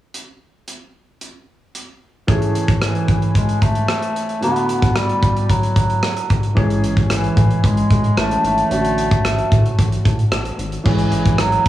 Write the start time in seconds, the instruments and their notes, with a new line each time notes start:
0.14 closed hi-hat
0.68 closed hi-hat
1.21 closed hi-hat
1.75 closed hi-hat
2.27 grand piano E3 A3 C#4 G#4, kick, closed hi-hat
2.42 closed hi-hat
2.55 closed hi-hat
2.68 kick, closed hi-hat
2.82 bass clarinet E3, cross-stick, closed hi-hat
2.95 closed hi-hat
3.08 kick, closed hi-hat
3.22 closed hi-hat
3.35 bass clarinet G#3, kick, closed hi-hat
3.49 closed hi-hat
3.62 bass clarinet A3, kick, closed hi-hat
3.75 closed hi-hat
3.88 cross-stick, closed hi-hat
4.02 closed hi-hat
4.16 closed hi-hat
4.29 closed hi-hat
4.40 grand piano A2 D3 B3 F#4, bass clarinet B3, closed hi-hat
4.56 closed hi-hat
4.69 closed hi-hat
4.82 kick, closed hi-hat
4.96 bass clarinet G3, cross-stick, closed hi-hat
5.09 closed hi-hat
5.23 kick, closed hi-hat
5.37 closed hi-hat
5.50 bass clarinet F#3, kick, closed hi-hat
5.63 closed hi-hat
5.76 kick, closed hi-hat
5.90 closed hi-hat
6.03 cross-stick, closed hi-hat
6.17 closed hi-hat
6.30 kick, closed hi-hat
6.43 closed hi-hat
6.55 analog synth bass A1, grand piano E3 G#3 C#4 G#4, kick, closed hi-hat
6.70 closed hi-hat
6.84 closed hi-hat
6.97 kick, closed hi-hat
7.10 analog synth bass A1, bass clarinet E3, cross-stick, closed hi-hat
7.24 closed hi-hat
7.37 analog synth bass A2, kick, closed hi-hat
7.51 closed hi-hat
7.64 analog synth bass A1, bass clarinet G#3, kick, closed hi-hat
7.77 closed hi-hat
7.90 analog synth bass A2, kick, closed hi-hat
8.04 closed hi-hat
8.17 analog synth bass A1, grand piano E3 A3 C#4 B4, bass clarinet A3, cross-stick, closed hi-hat
8.31 closed hi-hat
8.44 analog synth bass G#1, bass clarinet A3, closed hi-hat
8.58 closed hi-hat
8.70 analog synth bass A1, grand piano D3 A3 C#4 F#4, closed hi-hat
8.85 closed hi-hat
8.98 closed hi-hat
9.11 kick, closed hi-hat
9.25 analog synth bass A1, cross-stick, closed hi-hat
9.38 closed hi-hat
9.52 analog synth bass A2, kick, closed hi-hat
9.66 closed hi-hat
9.79 analog synth bass A1, kick, closed hi-hat
9.92 closed hi-hat
10.05 analog synth bass A2, kick, closed hi-hat
10.19 closed hi-hat
10.32 analog synth bass A1, cross-stick, closed hi-hat
10.45 closed hi-hat
10.59 analog synth bass G#1, closed hi-hat
10.72 closed hi-hat
10.84 analog synth bass A1, grand piano E3 G#3 C#4 G#4, bass clarinet E3, kick, crash
10.99 closed hi-hat
11.12 analog synth bass A1, closed hi-hat
11.25 kick, closed hi-hat
11.38 analog synth bass A1, bass clarinet F#3, cross-stick, closed hi-hat
11.52 closed hi-hat